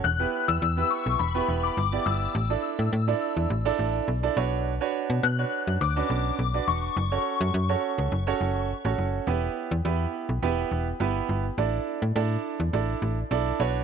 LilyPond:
<<
  \new Staff \with { instrumentName = "Synth bell" } { \time 4/4 \key e \dorian \tempo 4 = 104 fis'''8. e'''8. cis'''8 b''8. d'''8. e'''8~ | e'''2~ e'''8 r4. | r4 fis'''4 d'''4. cis'''8~ | cis'''2. r4 |
r1 | r1 | }
  \new Staff \with { instrumentName = "Grand piano" } { \time 4/4 \key e \dorian r16 <b e' g' b'>8. r16 <b e' g' b'>8. r16 <b e' g' b'>8. r16 <b e' g' d''>8. | r16 <d' e' a' d''>8. r16 <d' e' a' d''>8. r16 <d' e' a' d''>8. r16 <d' e' a' d''>16 <d' fis' b' cis''>8 | r16 <d' fis' b' cis''>8. r16 <d' fis' b' cis''>8. r16 <cis' d' fis' b'>8. r16 <d' fis' b' d''>8. | r16 <cis' fis' a' cis''>8. r16 <cis' fis' a' cis''>8. r16 <cis' fis' a' cis''>8. r16 <cis' fis' a' cis''>8. |
<b e' g' b'>8. r16 <b e' g' b'>8. r16 <b e' g' b'>8. r16 <b e' g' b'>8. r16 | <d' e' a' d''>8. r16 <d' e' a' d''>8. r16 <d' e' a' d''>8. r16 <d' e' a' d''>8 <d' fis' b' cis''>8 | }
  \new Staff \with { instrumentName = "FM bass" } { \clef bass \time 4/4 \key e \dorian e,,8 r16 e,16 e,8 r16 b,,16 e,,8 e,,8 g,,8 g,,8 | a,,8 r16 a,16 a,8 r16 e,16 a,,8 a,,8 b,,8 b,,8~ | b,,8 r16 b,16 b,8 r16 fis,16 d,8 b,,8 b,,8 e,,8 | fis,,8 r16 fis,16 fis,8 r16 cis,16 fis,,8 fis,,8. a,,16 fis,,8 |
e,,8 r16 e,16 e,8 r16 b,,16 e,,8 e,,8 g,,8 g,,8 | a,,8 r16 a,16 a,8 r16 e,16 a,,8 a,,8 b,,8 b,,8 | }
>>